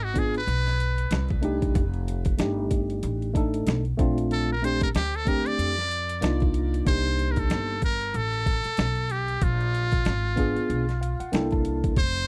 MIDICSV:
0, 0, Header, 1, 6, 480
1, 0, Start_track
1, 0, Tempo, 638298
1, 1324, Time_signature, 4, 2, 24, 8
1, 9228, End_track
2, 0, Start_track
2, 0, Title_t, "Muted trumpet"
2, 0, Program_c, 0, 59
2, 31, Note_on_c, 0, 66, 83
2, 140, Note_on_c, 0, 68, 87
2, 151, Note_off_c, 0, 66, 0
2, 271, Note_off_c, 0, 68, 0
2, 282, Note_on_c, 0, 71, 89
2, 962, Note_off_c, 0, 71, 0
2, 3253, Note_on_c, 0, 69, 88
2, 3378, Note_off_c, 0, 69, 0
2, 3399, Note_on_c, 0, 70, 86
2, 3494, Note_on_c, 0, 72, 98
2, 3505, Note_off_c, 0, 70, 0
2, 3628, Note_off_c, 0, 72, 0
2, 3633, Note_on_c, 0, 70, 84
2, 3676, Note_off_c, 0, 70, 0
2, 3731, Note_on_c, 0, 67, 91
2, 3879, Note_on_c, 0, 69, 88
2, 3890, Note_off_c, 0, 67, 0
2, 3970, Note_on_c, 0, 70, 98
2, 3981, Note_off_c, 0, 69, 0
2, 4115, Note_on_c, 0, 74, 108
2, 4126, Note_off_c, 0, 70, 0
2, 4829, Note_off_c, 0, 74, 0
2, 5171, Note_on_c, 0, 72, 111
2, 5498, Note_on_c, 0, 70, 77
2, 5509, Note_off_c, 0, 72, 0
2, 5560, Note_on_c, 0, 69, 96
2, 5571, Note_off_c, 0, 70, 0
2, 5892, Note_off_c, 0, 69, 0
2, 5899, Note_on_c, 0, 70, 96
2, 6138, Note_on_c, 0, 69, 96
2, 6149, Note_off_c, 0, 70, 0
2, 6856, Note_on_c, 0, 67, 90
2, 6867, Note_off_c, 0, 69, 0
2, 7094, Note_on_c, 0, 65, 89
2, 7105, Note_off_c, 0, 67, 0
2, 8529, Note_off_c, 0, 65, 0
2, 9013, Note_on_c, 0, 72, 114
2, 9228, Note_off_c, 0, 72, 0
2, 9228, End_track
3, 0, Start_track
3, 0, Title_t, "Tine electric piano"
3, 0, Program_c, 1, 4
3, 104, Note_on_c, 1, 59, 66
3, 115, Note_on_c, 1, 62, 62
3, 121, Note_on_c, 1, 65, 61
3, 130, Note_on_c, 1, 68, 73
3, 293, Note_off_c, 1, 59, 0
3, 299, Note_off_c, 1, 62, 0
3, 302, Note_off_c, 1, 65, 0
3, 306, Note_off_c, 1, 68, 0
3, 1064, Note_on_c, 1, 57, 78
3, 1071, Note_on_c, 1, 62, 80
3, 1079, Note_on_c, 1, 63, 76
3, 1087, Note_on_c, 1, 67, 88
3, 1370, Note_off_c, 1, 57, 0
3, 1373, Note_off_c, 1, 62, 0
3, 1377, Note_off_c, 1, 63, 0
3, 1381, Note_off_c, 1, 67, 0
3, 1787, Note_on_c, 1, 57, 71
3, 1797, Note_on_c, 1, 62, 72
3, 1801, Note_on_c, 1, 63, 65
3, 1811, Note_on_c, 1, 67, 85
3, 2475, Note_off_c, 1, 57, 0
3, 2480, Note_off_c, 1, 62, 0
3, 2482, Note_off_c, 1, 63, 0
3, 2487, Note_off_c, 1, 67, 0
3, 2510, Note_on_c, 1, 57, 87
3, 2516, Note_on_c, 1, 62, 80
3, 2527, Note_on_c, 1, 63, 73
3, 2535, Note_on_c, 1, 69, 97
3, 2868, Note_off_c, 1, 57, 0
3, 2872, Note_off_c, 1, 62, 0
3, 2877, Note_off_c, 1, 63, 0
3, 2881, Note_off_c, 1, 69, 0
3, 2989, Note_on_c, 1, 57, 98
3, 2998, Note_on_c, 1, 60, 92
3, 3005, Note_on_c, 1, 62, 88
3, 3015, Note_on_c, 1, 65, 107
3, 3399, Note_off_c, 1, 57, 0
3, 3404, Note_off_c, 1, 60, 0
3, 3408, Note_off_c, 1, 62, 0
3, 3413, Note_off_c, 1, 65, 0
3, 3474, Note_on_c, 1, 57, 77
3, 3480, Note_on_c, 1, 60, 64
3, 3489, Note_on_c, 1, 62, 73
3, 3497, Note_on_c, 1, 67, 75
3, 3658, Note_off_c, 1, 57, 0
3, 3662, Note_off_c, 1, 60, 0
3, 3666, Note_off_c, 1, 62, 0
3, 3670, Note_off_c, 1, 67, 0
3, 3948, Note_on_c, 1, 57, 73
3, 3958, Note_on_c, 1, 60, 69
3, 3967, Note_on_c, 1, 62, 67
3, 3975, Note_on_c, 1, 67, 80
3, 4308, Note_off_c, 1, 57, 0
3, 4312, Note_off_c, 1, 60, 0
3, 4317, Note_off_c, 1, 62, 0
3, 4321, Note_off_c, 1, 67, 0
3, 4671, Note_on_c, 1, 58, 85
3, 4682, Note_on_c, 1, 62, 75
3, 4688, Note_on_c, 1, 63, 79
3, 4697, Note_on_c, 1, 65, 98
3, 5143, Note_off_c, 1, 58, 0
3, 5151, Note_off_c, 1, 62, 0
3, 5152, Note_on_c, 1, 58, 57
3, 5159, Note_off_c, 1, 63, 0
3, 5160, Note_on_c, 1, 62, 56
3, 5168, Note_on_c, 1, 63, 50
3, 5170, Note_off_c, 1, 65, 0
3, 5175, Note_on_c, 1, 67, 63
3, 5837, Note_off_c, 1, 58, 0
3, 5841, Note_off_c, 1, 62, 0
3, 5845, Note_off_c, 1, 63, 0
3, 5849, Note_off_c, 1, 67, 0
3, 7790, Note_on_c, 1, 59, 82
3, 7799, Note_on_c, 1, 62, 80
3, 7807, Note_on_c, 1, 65, 79
3, 7815, Note_on_c, 1, 68, 93
3, 8148, Note_off_c, 1, 59, 0
3, 8153, Note_off_c, 1, 62, 0
3, 8157, Note_off_c, 1, 65, 0
3, 8161, Note_off_c, 1, 68, 0
3, 8282, Note_on_c, 1, 77, 72
3, 8412, Note_off_c, 1, 77, 0
3, 8423, Note_on_c, 1, 78, 71
3, 8513, Note_on_c, 1, 58, 88
3, 8516, Note_off_c, 1, 78, 0
3, 8522, Note_on_c, 1, 62, 83
3, 8524, Note_on_c, 1, 79, 74
3, 8529, Note_on_c, 1, 64, 85
3, 8535, Note_on_c, 1, 69, 97
3, 8653, Note_off_c, 1, 79, 0
3, 8665, Note_on_c, 1, 81, 73
3, 8980, Note_off_c, 1, 81, 0
3, 8998, Note_off_c, 1, 58, 0
3, 9002, Note_off_c, 1, 62, 0
3, 9006, Note_off_c, 1, 64, 0
3, 9009, Note_off_c, 1, 69, 0
3, 9228, End_track
4, 0, Start_track
4, 0, Title_t, "Upright bass"
4, 0, Program_c, 2, 32
4, 0, Note_on_c, 2, 32, 82
4, 335, Note_off_c, 2, 32, 0
4, 355, Note_on_c, 2, 35, 102
4, 815, Note_off_c, 2, 35, 0
4, 835, Note_on_c, 2, 36, 102
4, 1295, Note_off_c, 2, 36, 0
4, 1319, Note_on_c, 2, 29, 112
4, 1777, Note_off_c, 2, 29, 0
4, 1799, Note_on_c, 2, 31, 90
4, 2257, Note_off_c, 2, 31, 0
4, 2280, Note_on_c, 2, 33, 100
4, 2738, Note_off_c, 2, 33, 0
4, 2761, Note_on_c, 2, 35, 105
4, 2990, Note_off_c, 2, 35, 0
4, 2998, Note_on_c, 2, 34, 100
4, 3691, Note_off_c, 2, 34, 0
4, 3720, Note_on_c, 2, 38, 93
4, 4178, Note_off_c, 2, 38, 0
4, 4200, Note_on_c, 2, 41, 93
4, 4657, Note_off_c, 2, 41, 0
4, 4678, Note_on_c, 2, 36, 107
4, 5137, Note_off_c, 2, 36, 0
4, 5163, Note_on_c, 2, 36, 100
4, 5619, Note_off_c, 2, 36, 0
4, 5641, Note_on_c, 2, 31, 94
4, 6098, Note_off_c, 2, 31, 0
4, 6124, Note_on_c, 2, 33, 97
4, 6484, Note_off_c, 2, 33, 0
4, 6604, Note_on_c, 2, 35, 94
4, 7060, Note_off_c, 2, 35, 0
4, 7080, Note_on_c, 2, 34, 106
4, 7538, Note_off_c, 2, 34, 0
4, 7564, Note_on_c, 2, 32, 90
4, 7924, Note_off_c, 2, 32, 0
4, 8043, Note_on_c, 2, 35, 94
4, 8404, Note_off_c, 2, 35, 0
4, 8521, Note_on_c, 2, 36, 93
4, 8978, Note_off_c, 2, 36, 0
4, 8999, Note_on_c, 2, 29, 104
4, 9228, Note_off_c, 2, 29, 0
4, 9228, End_track
5, 0, Start_track
5, 0, Title_t, "Muted upright bass strokes"
5, 6506, Note_on_c, 9, 29, 42
5, 6581, Note_off_c, 9, 29, 0
5, 7942, Note_on_c, 9, 29, 51
5, 8018, Note_off_c, 9, 29, 0
5, 8424, Note_on_c, 9, 29, 47
5, 8499, Note_off_c, 9, 29, 0
5, 9228, End_track
6, 0, Start_track
6, 0, Title_t, "Drums"
6, 117, Note_on_c, 9, 42, 72
6, 119, Note_on_c, 9, 36, 87
6, 192, Note_off_c, 9, 42, 0
6, 194, Note_off_c, 9, 36, 0
6, 258, Note_on_c, 9, 42, 45
6, 334, Note_off_c, 9, 42, 0
6, 359, Note_on_c, 9, 42, 86
6, 434, Note_off_c, 9, 42, 0
6, 503, Note_on_c, 9, 38, 36
6, 503, Note_on_c, 9, 42, 36
6, 579, Note_off_c, 9, 38, 0
6, 579, Note_off_c, 9, 42, 0
6, 603, Note_on_c, 9, 42, 64
6, 678, Note_off_c, 9, 42, 0
6, 737, Note_on_c, 9, 42, 53
6, 813, Note_off_c, 9, 42, 0
6, 832, Note_on_c, 9, 42, 94
6, 846, Note_on_c, 9, 38, 111
6, 908, Note_off_c, 9, 42, 0
6, 921, Note_off_c, 9, 38, 0
6, 966, Note_on_c, 9, 42, 36
6, 981, Note_on_c, 9, 36, 100
6, 1042, Note_off_c, 9, 42, 0
6, 1056, Note_off_c, 9, 36, 0
6, 1073, Note_on_c, 9, 42, 75
6, 1148, Note_off_c, 9, 42, 0
6, 1219, Note_on_c, 9, 42, 51
6, 1220, Note_on_c, 9, 36, 92
6, 1294, Note_off_c, 9, 42, 0
6, 1295, Note_off_c, 9, 36, 0
6, 1318, Note_on_c, 9, 36, 117
6, 1318, Note_on_c, 9, 42, 85
6, 1393, Note_off_c, 9, 36, 0
6, 1393, Note_off_c, 9, 42, 0
6, 1455, Note_on_c, 9, 42, 34
6, 1531, Note_off_c, 9, 42, 0
6, 1565, Note_on_c, 9, 42, 87
6, 1640, Note_off_c, 9, 42, 0
6, 1691, Note_on_c, 9, 42, 54
6, 1697, Note_on_c, 9, 36, 87
6, 1766, Note_off_c, 9, 42, 0
6, 1773, Note_off_c, 9, 36, 0
6, 1794, Note_on_c, 9, 42, 88
6, 1802, Note_on_c, 9, 38, 105
6, 1869, Note_off_c, 9, 42, 0
6, 1877, Note_off_c, 9, 38, 0
6, 2035, Note_on_c, 9, 42, 73
6, 2037, Note_on_c, 9, 36, 80
6, 2111, Note_off_c, 9, 42, 0
6, 2113, Note_off_c, 9, 36, 0
6, 2180, Note_on_c, 9, 42, 51
6, 2255, Note_off_c, 9, 42, 0
6, 2277, Note_on_c, 9, 42, 93
6, 2353, Note_off_c, 9, 42, 0
6, 2423, Note_on_c, 9, 42, 36
6, 2499, Note_off_c, 9, 42, 0
6, 2520, Note_on_c, 9, 36, 92
6, 2524, Note_on_c, 9, 42, 64
6, 2595, Note_off_c, 9, 36, 0
6, 2600, Note_off_c, 9, 42, 0
6, 2661, Note_on_c, 9, 42, 60
6, 2737, Note_off_c, 9, 42, 0
6, 2757, Note_on_c, 9, 42, 100
6, 2770, Note_on_c, 9, 38, 111
6, 2832, Note_off_c, 9, 42, 0
6, 2845, Note_off_c, 9, 38, 0
6, 2895, Note_on_c, 9, 42, 34
6, 2970, Note_off_c, 9, 42, 0
6, 3000, Note_on_c, 9, 42, 75
6, 3001, Note_on_c, 9, 36, 108
6, 3076, Note_off_c, 9, 36, 0
6, 3076, Note_off_c, 9, 42, 0
6, 3143, Note_on_c, 9, 42, 55
6, 3218, Note_off_c, 9, 42, 0
6, 3241, Note_on_c, 9, 42, 84
6, 3316, Note_off_c, 9, 42, 0
6, 3490, Note_on_c, 9, 42, 88
6, 3565, Note_off_c, 9, 42, 0
6, 3616, Note_on_c, 9, 42, 57
6, 3621, Note_on_c, 9, 36, 93
6, 3691, Note_off_c, 9, 42, 0
6, 3696, Note_off_c, 9, 36, 0
6, 3720, Note_on_c, 9, 42, 90
6, 3728, Note_on_c, 9, 38, 111
6, 3795, Note_off_c, 9, 42, 0
6, 3803, Note_off_c, 9, 38, 0
6, 3865, Note_on_c, 9, 42, 37
6, 3941, Note_off_c, 9, 42, 0
6, 3961, Note_on_c, 9, 36, 88
6, 3961, Note_on_c, 9, 42, 71
6, 4036, Note_off_c, 9, 42, 0
6, 4037, Note_off_c, 9, 36, 0
6, 4106, Note_on_c, 9, 42, 50
6, 4181, Note_off_c, 9, 42, 0
6, 4204, Note_on_c, 9, 42, 93
6, 4279, Note_off_c, 9, 42, 0
6, 4348, Note_on_c, 9, 38, 38
6, 4423, Note_off_c, 9, 38, 0
6, 4446, Note_on_c, 9, 42, 63
6, 4521, Note_off_c, 9, 42, 0
6, 4582, Note_on_c, 9, 42, 56
6, 4658, Note_off_c, 9, 42, 0
6, 4679, Note_on_c, 9, 42, 101
6, 4692, Note_on_c, 9, 38, 115
6, 4754, Note_off_c, 9, 42, 0
6, 4767, Note_off_c, 9, 38, 0
6, 4815, Note_on_c, 9, 42, 36
6, 4828, Note_on_c, 9, 36, 104
6, 4890, Note_off_c, 9, 42, 0
6, 4903, Note_off_c, 9, 36, 0
6, 4919, Note_on_c, 9, 42, 71
6, 4994, Note_off_c, 9, 42, 0
6, 5069, Note_on_c, 9, 42, 54
6, 5144, Note_off_c, 9, 42, 0
6, 5163, Note_on_c, 9, 42, 84
6, 5164, Note_on_c, 9, 36, 113
6, 5238, Note_off_c, 9, 42, 0
6, 5239, Note_off_c, 9, 36, 0
6, 5306, Note_on_c, 9, 42, 33
6, 5382, Note_off_c, 9, 42, 0
6, 5408, Note_on_c, 9, 42, 80
6, 5484, Note_off_c, 9, 42, 0
6, 5537, Note_on_c, 9, 42, 51
6, 5543, Note_on_c, 9, 36, 80
6, 5612, Note_off_c, 9, 42, 0
6, 5618, Note_off_c, 9, 36, 0
6, 5640, Note_on_c, 9, 42, 86
6, 5648, Note_on_c, 9, 38, 97
6, 5715, Note_off_c, 9, 42, 0
6, 5723, Note_off_c, 9, 38, 0
6, 5880, Note_on_c, 9, 42, 70
6, 5883, Note_on_c, 9, 36, 88
6, 5955, Note_off_c, 9, 42, 0
6, 5958, Note_off_c, 9, 36, 0
6, 6024, Note_on_c, 9, 42, 44
6, 6099, Note_off_c, 9, 42, 0
6, 6123, Note_on_c, 9, 42, 87
6, 6199, Note_off_c, 9, 42, 0
6, 6267, Note_on_c, 9, 42, 34
6, 6342, Note_off_c, 9, 42, 0
6, 6364, Note_on_c, 9, 36, 90
6, 6367, Note_on_c, 9, 42, 60
6, 6439, Note_off_c, 9, 36, 0
6, 6442, Note_off_c, 9, 42, 0
6, 6499, Note_on_c, 9, 42, 55
6, 6574, Note_off_c, 9, 42, 0
6, 6596, Note_on_c, 9, 42, 90
6, 6609, Note_on_c, 9, 38, 110
6, 6671, Note_off_c, 9, 42, 0
6, 6684, Note_off_c, 9, 38, 0
6, 6733, Note_on_c, 9, 42, 35
6, 6808, Note_off_c, 9, 42, 0
6, 6840, Note_on_c, 9, 42, 77
6, 6915, Note_off_c, 9, 42, 0
6, 6980, Note_on_c, 9, 42, 54
6, 7056, Note_off_c, 9, 42, 0
6, 7079, Note_on_c, 9, 42, 80
6, 7082, Note_on_c, 9, 36, 109
6, 7155, Note_off_c, 9, 42, 0
6, 7157, Note_off_c, 9, 36, 0
6, 7223, Note_on_c, 9, 42, 32
6, 7298, Note_off_c, 9, 42, 0
6, 7329, Note_on_c, 9, 42, 78
6, 7404, Note_off_c, 9, 42, 0
6, 7458, Note_on_c, 9, 42, 55
6, 7463, Note_on_c, 9, 36, 87
6, 7533, Note_off_c, 9, 42, 0
6, 7538, Note_off_c, 9, 36, 0
6, 7558, Note_on_c, 9, 42, 89
6, 7566, Note_on_c, 9, 38, 106
6, 7633, Note_off_c, 9, 42, 0
6, 7642, Note_off_c, 9, 38, 0
6, 7799, Note_on_c, 9, 42, 71
6, 7802, Note_on_c, 9, 36, 87
6, 7874, Note_off_c, 9, 42, 0
6, 7877, Note_off_c, 9, 36, 0
6, 7945, Note_on_c, 9, 42, 46
6, 8020, Note_off_c, 9, 42, 0
6, 8046, Note_on_c, 9, 42, 84
6, 8121, Note_off_c, 9, 42, 0
6, 8187, Note_on_c, 9, 38, 36
6, 8187, Note_on_c, 9, 42, 33
6, 8263, Note_off_c, 9, 38, 0
6, 8263, Note_off_c, 9, 42, 0
6, 8292, Note_on_c, 9, 42, 59
6, 8367, Note_off_c, 9, 42, 0
6, 8425, Note_on_c, 9, 42, 56
6, 8500, Note_off_c, 9, 42, 0
6, 8519, Note_on_c, 9, 42, 96
6, 8533, Note_on_c, 9, 38, 109
6, 8595, Note_off_c, 9, 42, 0
6, 8608, Note_off_c, 9, 38, 0
6, 8653, Note_on_c, 9, 42, 35
6, 8666, Note_on_c, 9, 36, 101
6, 8728, Note_off_c, 9, 42, 0
6, 8742, Note_off_c, 9, 36, 0
6, 8759, Note_on_c, 9, 42, 73
6, 8835, Note_off_c, 9, 42, 0
6, 8902, Note_on_c, 9, 42, 53
6, 8903, Note_on_c, 9, 36, 99
6, 8978, Note_off_c, 9, 36, 0
6, 8978, Note_off_c, 9, 42, 0
6, 8997, Note_on_c, 9, 42, 79
6, 9000, Note_on_c, 9, 36, 110
6, 9072, Note_off_c, 9, 42, 0
6, 9076, Note_off_c, 9, 36, 0
6, 9143, Note_on_c, 9, 42, 31
6, 9218, Note_off_c, 9, 42, 0
6, 9228, End_track
0, 0, End_of_file